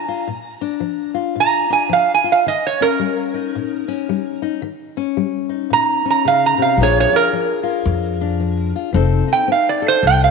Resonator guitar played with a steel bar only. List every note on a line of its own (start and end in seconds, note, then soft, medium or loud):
0.00 1.15 A#5 medium
1.40 1.72 A#5 loud
1.73 1.91 G#5 medium
1.93 2.10 F5 loud
2.14 2.30 G#5 medium
2.32 2.48 F5 medium
2.48 2.65 D#5 medium
2.67 2.83 C#5 medium
2.82 4.41 A#4 medium
5.73 6.07 A#5 loud
6.10 6.26 A#5 medium
6.28 6.44 F5 loud
6.46 6.62 A#5 medium
6.62 6.79 F5 medium
6.83 6.98 C#5 medium
7.00 7.16 C#5 medium
7.16 8.73 A#4 loud
9.33 9.49 G5 loud
9.52 9.68 F5 medium
9.69 9.85 D5 medium
9.88 10.04 C5 loud
10.07 10.22 G5 loud
10.24 10.31 F5 medium